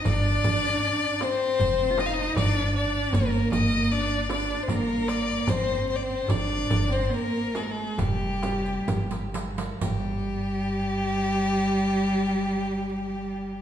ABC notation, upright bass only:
X:1
M:4/4
L:1/8
Q:1/4=73
K:none
V:1 name="Upright bass" clef=bass
G,,, G,,, z2 F,,,2 G,,,2 | G,,, G,,,3 G,,,2 G,,,2 | G,,, G,,, z2 F,,,2 G,,,2 | G,,,8 |]